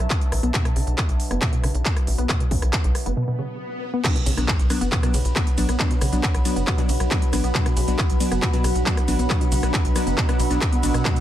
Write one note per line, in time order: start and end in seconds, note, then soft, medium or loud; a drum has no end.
0.00 3.17 B2 medium
0.00 3.17 F#3 medium
0.00 3.17 D4 medium
0.00 3.17 B4 medium
0.00 3.17 E5 medium
0.00 3.19 A5 medium
0.10 kick loud
0.10 clap loud
0.10 closed hi-hat medium
0.21 closed hi-hat soft
0.32 0.40 A1 medium
0.32 cross-stick medium
0.32 open hi-hat loud
0.43 0.51 B1 medium
0.43 0.50 B3 medium
0.43 closed hi-hat medium
0.54 0.61 B2 medium
0.54 kick loud
0.54 clap loud
0.54 closed hi-hat medium
0.65 0.69 B2 medium
0.65 cross-stick medium
0.65 closed hi-hat medium
0.76 0.84 B1 medium
0.76 0.80 C#3 medium
0.76 open hi-hat loud
0.87 0.95 B1 medium
0.87 closed hi-hat soft
0.98 kick loud
0.98 cross-stick medium
0.98 clap loud
0.98 closed hi-hat medium
1.09 1.17 B1 medium
1.09 closed hi-hat medium
1.20 open hi-hat loud
1.31 1.39 F#1 medium
1.31 1.37 B3 medium
1.31 cross-stick medium
1.31 closed hi-hat medium
1.42 1.48 B2 medium
1.42 kick loud
1.42 clap loud
1.42 closed hi-hat medium
1.53 1.57 B2 medium
1.53 closed hi-hat medium
1.64 1.72 B1 loud
1.64 1.68 C#3 medium
1.64 cross-stick medium
1.64 open hi-hat loud
1.75 1.83 B1 medium
1.75 closed hi-hat medium
1.85 kick loud
1.85 clap loud
1.85 closed hi-hat medium
1.97 cross-stick medium
1.97 closed hi-hat soft
2.07 2.15 A1 loud
2.07 open hi-hat loud
2.18 2.26 B1 medium
2.18 2.25 B3 medium
2.18 closed hi-hat medium
2.29 2.36 B2 medium
2.29 kick loud
2.29 cross-stick medium
2.29 clap loud
2.29 closed hi-hat medium
2.40 2.44 B2 medium
2.40 closed hi-hat medium
2.51 2.59 B1 medium
2.51 2.55 C#3 medium
2.51 kick medium
2.51 open hi-hat loud
2.62 2.70 B1 medium
2.62 cross-stick medium
2.62 closed hi-hat medium
2.73 kick loud
2.73 clap loud
2.73 closed hi-hat medium
2.84 2.92 B1 medium
2.84 closed hi-hat medium
2.95 cross-stick medium
2.95 open hi-hat loud
3.06 3.14 F#1 medium
3.06 3.13 B3 medium
3.06 closed hi-hat medium
3.17 3.24 B2 medium
3.17 swell medium
3.28 3.32 B2 medium
3.39 3.43 C#3 medium
3.94 4.00 B3 medium
4.04 11.20 B2 medium
4.04 4.11 B2 medium
4.04 11.20 F#3 medium
4.04 4.16 F#3 medium
4.04 4.16 B3 medium
4.04 4.16 D4 loud
4.04 11.20 D4 medium
4.04 kick loud
4.04 cross-stick medium
4.04 clap loud
4.04 closed hi-hat medium
4.04 crash loud
4.04 impact medium
4.04 shaker soft
4.15 4.19 B2 medium
4.15 closed hi-hat medium
4.15 shaker soft
4.26 4.34 B1 medium
4.26 4.30 C#3 medium
4.26 open hi-hat loud
4.26 ride medium
4.26 shaker medium
4.30 11.20 B4 medium
4.37 4.45 B1 medium
4.37 4.49 F#3 medium
4.37 4.49 B3 medium
4.37 4.49 D4 medium
4.37 cross-stick medium
4.37 closed hi-hat medium
4.37 shaker soft
4.46 11.20 F#5 medium
4.46 kick loud
4.46 clap loud
4.46 closed hi-hat medium
4.46 shaker soft
4.59 4.67 B1 medium
4.59 closed hi-hat medium
4.59 shaker soft
4.70 4.82 F#3 medium
4.70 4.82 B3 medium
4.70 4.82 D4 loud
4.70 11.20 B5 medium
4.70 cross-stick medium
4.70 open hi-hat loud
4.70 ride medium
4.70 shaker medium
4.81 4.89 F#1 medium
4.81 4.88 B3 medium
4.81 closed hi-hat medium
4.81 shaker soft
4.92 4.99 B2 medium
4.92 kick loud
4.92 clap loud
4.92 closed hi-hat medium
4.92 shaker soft
5.03 5.07 B2 medium
5.03 5.14 F#3 loud
5.03 5.14 B3 medium
5.03 5.14 D4 loud
5.03 cross-stick medium
5.03 closed hi-hat medium
5.03 shaker soft
5.14 5.22 B1 loud
5.14 5.18 C#3 medium
5.14 open hi-hat loud
5.14 ride medium
5.14 shaker medium
5.25 5.33 B1 medium
5.25 closed hi-hat medium
5.25 shaker soft
5.36 5.47 F#3 medium
5.36 5.47 B3 medium
5.36 5.47 D4 loud
5.36 kick loud
5.36 cross-stick medium
5.36 clap loud
5.36 closed hi-hat medium
5.36 shaker soft
5.47 closed hi-hat medium
5.47 shaker soft
5.58 5.66 A1 loud
5.58 5.69 F#3 medium
5.58 5.69 B3 medium
5.58 5.69 D4 loud
5.58 open hi-hat loud
5.58 ride medium
5.58 shaker medium
5.69 5.77 B1 medium
5.69 5.75 B3 medium
5.69 cross-stick medium
5.69 closed hi-hat medium
5.69 shaker soft
5.80 5.86 B2 medium
5.80 5.91 F#3 medium
5.80 5.91 B3 medium
5.80 5.91 D4 medium
5.80 kick loud
5.80 clap loud
5.80 closed hi-hat medium
5.80 shaker soft
5.91 5.95 B2 medium
5.91 closed hi-hat medium
5.91 shaker soft
6.01 6.10 B1 medium
6.01 6.05 C#3 medium
6.01 cross-stick medium
6.01 open hi-hat loud
6.01 ride medium
6.01 shaker medium
6.13 6.20 B1 medium
6.13 6.24 F#3 medium
6.13 6.24 B3 medium
6.13 6.24 D4 medium
6.13 closed hi-hat medium
6.13 shaker soft
6.23 kick loud
6.23 clap loud
6.23 closed hi-hat medium
6.23 shaker soft
6.34 6.42 B1 medium
6.34 cross-stick medium
6.34 closed hi-hat medium
6.34 shaker soft
6.45 6.57 F#3 medium
6.45 6.57 B3 medium
6.45 6.57 D4 loud
6.45 open hi-hat loud
6.45 ride medium
6.45 shaker medium
6.56 6.64 F#1 medium
6.56 6.63 B3 medium
6.56 closed hi-hat medium
6.56 shaker soft
6.67 6.74 B2 medium
6.67 kick loud
6.67 cross-stick medium
6.67 clap loud
6.67 closed hi-hat medium
6.67 shaker soft
6.78 6.82 B2 medium
6.78 6.90 F#3 loud
6.78 6.90 B3 medium
6.78 6.90 D4 loud
6.78 closed hi-hat medium
6.78 shaker soft
6.89 6.97 B1 loud
6.89 6.93 C#3 medium
6.89 open hi-hat loud
6.89 ride medium
6.89 shaker medium
7.00 7.08 B1 medium
7.00 cross-stick medium
7.00 closed hi-hat medium
7.00 shaker soft
7.11 7.23 F#3 medium
7.11 7.23 B3 medium
7.11 7.23 D4 loud
7.11 kick loud
7.11 clap loud
7.11 closed hi-hat medium
7.11 shaker soft
7.22 closed hi-hat medium
7.22 shaker soft
7.33 7.41 A1 loud
7.33 7.44 F#3 loud
7.33 7.44 B3 medium
7.33 7.44 D4 loud
7.33 cross-stick medium
7.33 open hi-hat loud
7.33 ride medium
7.33 shaker medium
7.44 7.52 B1 medium
7.44 7.50 B3 medium
7.44 closed hi-hat medium
7.44 shaker soft
7.55 7.61 B2 medium
7.55 7.66 F#3 medium
7.55 7.66 B3 medium
7.55 7.66 D4 loud
7.55 kick loud
7.55 clap loud
7.55 closed hi-hat medium
7.55 shaker soft
7.66 7.70 B2 medium
7.66 cross-stick medium
7.66 closed hi-hat medium
7.66 shaker soft
7.77 7.85 B1 medium
7.77 7.81 C#3 medium
7.77 open hi-hat loud
7.77 ride medium
7.77 shaker medium
7.88 7.96 B1 medium
7.88 7.99 F#3 medium
7.88 7.99 B3 medium
7.88 7.99 D4 medium
7.88 closed hi-hat medium
7.88 shaker soft
7.99 kick loud
7.99 cross-stick medium
7.99 clap loud
7.99 closed hi-hat medium
7.99 shaker soft
8.10 8.18 B1 medium
8.10 closed hi-hat medium
8.10 shaker soft
8.20 8.32 F#3 medium
8.20 8.32 B3 medium
8.20 8.32 D4 loud
8.20 open hi-hat loud
8.20 ride medium
8.20 shaker medium
8.31 8.39 F#1 medium
8.31 8.38 B3 medium
8.31 cross-stick medium
8.31 closed hi-hat medium
8.31 shaker soft
8.42 8.49 B2 medium
8.42 kick loud
8.42 clap loud
8.42 closed hi-hat medium
8.42 shaker soft
8.53 8.57 B2 medium
8.53 8.65 F#3 loud
8.53 8.65 B3 medium
8.53 8.65 D4 loud
8.53 closed hi-hat medium
8.53 shaker soft
8.64 8.72 B1 medium
8.64 8.68 C#3 medium
8.64 cross-stick medium
8.64 open hi-hat loud
8.64 ride medium
8.64 shaker medium
8.75 8.83 B1 medium
8.75 closed hi-hat medium
8.75 shaker soft
8.86 8.98 F#3 medium
8.86 8.98 B3 medium
8.86 8.98 D4 loud
8.86 kick loud
8.86 clap loud
8.86 closed hi-hat medium
8.86 shaker soft
8.97 cross-stick medium
8.97 closed hi-hat medium
8.97 shaker soft
9.08 9.16 A1 loud
9.08 9.20 F#3 loud
9.08 9.20 B3 medium
9.08 9.20 D4 loud
9.08 open hi-hat loud
9.08 ride medium
9.08 shaker medium
9.19 9.27 B1 medium
9.19 9.26 B3 medium
9.19 closed hi-hat medium
9.19 shaker soft
9.30 9.37 B2 medium
9.30 9.41 F#3 medium
9.30 9.41 B3 medium
9.30 9.41 D4 medium
9.30 kick loud
9.30 cross-stick medium
9.30 clap loud
9.30 closed hi-hat medium
9.30 shaker soft
9.41 9.45 B2 medium
9.41 closed hi-hat medium
9.41 shaker soft
9.52 9.60 B1 medium
9.52 9.56 C#3 medium
9.52 open hi-hat loud
9.52 ride medium
9.52 shaker medium
9.63 9.71 B1 medium
9.63 9.74 F#3 medium
9.63 9.74 B3 medium
9.63 9.74 D4 medium
9.63 cross-stick medium
9.63 closed hi-hat medium
9.63 shaker soft
9.74 kick loud
9.74 clap loud
9.74 closed hi-hat medium
9.74 shaker soft
9.85 9.93 B1 medium
9.85 closed hi-hat medium
9.85 shaker soft
9.96 10.07 F#3 medium
9.96 10.07 B3 medium
9.96 10.07 D4 loud
9.96 cross-stick medium
9.96 open hi-hat loud
9.96 ride medium
9.96 shaker medium
10.07 10.15 F#1 medium
10.07 10.13 B3 medium
10.07 closed hi-hat medium
10.07 shaker soft
10.17 10.24 B2 medium
10.17 kick loud
10.17 clap loud
10.17 closed hi-hat medium
10.17 shaker soft
10.29 10.33 B2 medium
10.29 10.40 F#3 loud
10.29 10.40 B3 medium
10.29 10.40 D4 loud
10.29 cross-stick medium
10.29 closed hi-hat medium
10.29 shaker soft
10.39 10.48 B1 loud
10.39 10.43 B2 medium
10.39 open hi-hat loud
10.39 ride medium
10.39 shaker medium
10.51 10.58 B1 medium
10.51 10.62 F#3 medium
10.51 10.62 B3 medium
10.51 10.62 D4 medium
10.51 closed hi-hat medium
10.51 shaker soft
10.61 kick loud
10.61 cross-stick medium
10.61 clap loud
10.61 closed hi-hat medium
10.61 shaker soft
10.72 10.76 B3 medium
10.72 closed hi-hat medium
10.72 shaker soft
10.83 10.91 A1 loud
10.83 10.95 F#3 medium
10.83 10.95 B3 medium
10.83 10.95 D4 medium
10.83 open hi-hat loud
10.83 ride medium
10.83 shaker medium
10.94 11.02 B1 medium
10.94 11.04 B2 loud
10.94 cross-stick medium
10.94 closed hi-hat medium
10.94 shaker soft
11.05 11.12 B2 medium
11.05 11.17 F#3 medium
11.05 11.17 B3 medium
11.05 11.17 D4 medium
11.05 kick loud
11.05 cross-stick medium
11.05 clap loud
11.05 closed hi-hat medium
11.05 shaker soft
11.16 11.20 B2 medium
11.16 closed hi-hat medium
11.16 shaker soft